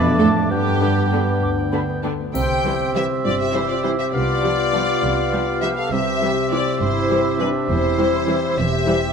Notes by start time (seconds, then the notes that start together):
Already playing: F2 B2 A3 B3 D4 B4 A5 D6
0.05 D5
0.18 A2 D3 A3 D4 A4
0.36 D5
0.50 G2 G3 B3 G4 G5
0.67 B3
0.81 D3 B3 D4
0.98 D5
1.11 D3 B3 D4 B4
1.28 D5
1.42 D2 D6
1.59 D5
1.73 D3 B3 D4 B5
1.90 B3
2.03 D3 B3 D4 G5
2.20 B3
2.34 C2 C3 C4 G4 C5 E5 G5, triangle
2.64 E3 G3 C4 E4
2.93 E3 G3 C4 E4 G4 E5
3.24 G1 G2 F4 C5 D5
3.40 G4 E5
3.53 E3 G3 C4 E4 G4 C5
3.69 F4 D5
3.83 E3 G3 C4 E4 C5
3.99 G4 E5
4.13 C2 C3 B3 F4 D5 F5
4.42 F3 G3 B3 D4
4.72 F3 G3 B3 D4 F4
5.03 C2 C3 B4
5.32 F3 G3 B3 D4 G4
5.61 F3 G3 B3 D4 G4 B4 E5
5.78 A4 F5
5.92 C2 C3 C4 G4 E5
6.21 E3 G3 C4
6.49 E3 G3 C4 E4 F4 D5
6.80 G1 G2 E4 C5
7.08 E3 G3 C4 G4
7.37 E3 G3 C4 D4 B4 C5
7.69 E1 E2 E4 C5
7.98 E3 G3 C4
8.26 E3 G3 C4 E4
8.57 E1 E2 G4 C5 E5
8.86 E3 G3 C4 G4